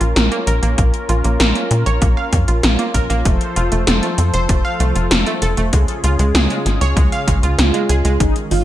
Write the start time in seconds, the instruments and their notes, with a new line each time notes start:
Already playing: analog synth pad C#4 F4 A#4
0.01 analog synth bass A#1, synth arpeggio sound F4, closed hi-hat
0.16 analog synth bass A#1, snare, closed hi-hat
0.32 synth arpeggio sound A#3, closed hi-hat
0.47 analog synth bass A#1, synth arpeggio sound A#4, closed hi-hat
0.63 analog synth bass A#1, synth arpeggio sound A#3, closed hi-hat
0.78 analog synth bass A#1, synth arpeggio sound A#3, kick, closed hi-hat
0.94 closed hi-hat
1.09 analog synth bass A#1, synth arpeggio sound F4, closed hi-hat
1.24 analog synth bass A#1, synth arpeggio sound A#3, closed hi-hat
1.40 analog synth bass A#1, synth arpeggio sound A#4, snare, closed hi-hat
1.55 synth arpeggio sound A#3, closed hi-hat
1.71 analog synth bass A#2, closed hi-hat
1.86 analog synth bass A#1, synth arpeggio sound C#5, closed hi-hat
2.02 analog synth bass A#1, synth arpeggio sound A#3, kick, closed hi-hat
2.17 synth arpeggio sound F5
2.33 analog synth bass F2, synth arpeggio sound A#3, kick, closed hi-hat
2.48 analog synth bass A#1, synth arpeggio sound F4, closed hi-hat
2.63 analog synth bass A#1, snare, closed hi-hat
2.79 synth arpeggio sound A#3, closed hi-hat
2.94 analog synth bass A#1, synth arpeggio sound A#4, kick, closed hi-hat
3.10 analog synth bass A#1, synth arpeggio sound A#3, closed hi-hat
3.25 analog synth bass F1, analog synth pad F3 A4 C5, synth arpeggio sound A3, kick, closed hi-hat
3.41 closed hi-hat
3.56 analog synth bass F1, synth arpeggio sound F4, closed hi-hat
3.72 analog synth bass F1, synth arpeggio sound A3, closed hi-hat
3.87 analog synth bass F1, synth arpeggio sound A4, snare, closed hi-hat
4.03 synth arpeggio sound A3, closed hi-hat
4.18 analog synth bass F2, closed hi-hat
4.34 analog synth bass F1, synth arpeggio sound C5, closed hi-hat
4.49 analog synth bass F1, synth arpeggio sound A3, kick, closed hi-hat
4.65 synth arpeggio sound F5
4.80 analog synth bass C2, synth arpeggio sound A3, closed hi-hat
4.95 analog synth bass F1, synth arpeggio sound F4, closed hi-hat
5.11 analog synth bass F1, snare, closed hi-hat
5.26 synth arpeggio sound A3, closed hi-hat
5.42 analog synth bass F1, synth arpeggio sound A4, closed hi-hat
5.57 analog synth bass F1, synth arpeggio sound A3, closed hi-hat
5.72 analog synth bass C#2, analog synth pad C#3 C#4 F4 G#4, synth arpeggio sound G#3, kick, closed hi-hat
5.88 closed hi-hat
6.04 analog synth bass C#2, synth arpeggio sound F4, closed hi-hat
6.19 analog synth bass C#2, synth arpeggio sound G#3, closed hi-hat
6.35 analog synth bass C#2, synth arpeggio sound G#4, snare, closed hi-hat
6.50 synth arpeggio sound G#3, closed hi-hat
6.66 analog synth bass G#1, snare, closed hi-hat
6.81 analog synth bass C#2, synth arpeggio sound C#5, closed hi-hat
6.97 analog synth bass C#2, synth arpeggio sound G#3, kick, closed hi-hat
7.12 synth arpeggio sound F5, closed hi-hat
7.28 analog synth bass G#1, synth arpeggio sound G#3, kick, closed hi-hat
7.43 analog synth bass C#2, synth arpeggio sound F4, closed hi-hat
7.58 analog synth bass C#2, analog polysynth F4, snare, closed hi-hat
7.74 synth arpeggio sound G#3, closed hi-hat
7.89 analog synth bass C#2, synth arpeggio sound G#4, closed hi-hat
8.05 analog synth bass C#2, synth arpeggio sound G#3, closed hi-hat
8.20 analog synth bass G#1, analog synth pad D#3 G#3 C#4, synth arpeggio sound G#3, analog polysynth D#4, kick, closed hi-hat
8.36 closed hi-hat
8.51 analog synth bass G#1, synth arpeggio sound D#4, analog polysynth F4, open hi-hat